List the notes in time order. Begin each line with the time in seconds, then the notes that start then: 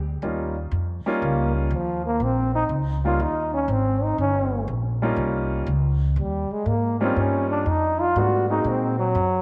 Already playing: D2
0.22 D#2 G3 A#3 C#4 D#4 F4
0.71 F2
1.05 G3 A#3 C#4 D#4 F4, muted upright bass stroke
1.22 C#2 A#3
1.56 C#3
1.71 D#2 F3
2.06 A#3
2.20 A#1 C4
2.55 D#4
2.69 C#2
3.05 G3 A#3 C#4 D#4 F4
3.20 D#2 D#4
3.54 C#4
3.68 G#1 C4
4.03 D#4
4.18 G1 C#4
4.68 A#1
5.02 G3 A#3 C#4 D#4 F4
5.16 C2
5.67 C#2
6.16 D#2 G3
6.51 G#3, muted upright bass stroke
6.66 G#2 A#3
7.00 G3 A#3 C4 C#4 D#4 F4
7.16 G2 C#4
7.50 D4
7.66 F2 D#4
8.01 F4
8.16 G#2 G3 A3 B3 D4 F4 F#4
8.50 G#3 A#3 C4 D#4 F#4
8.64 A#2 C4
8.99 F#3
9.15 F#2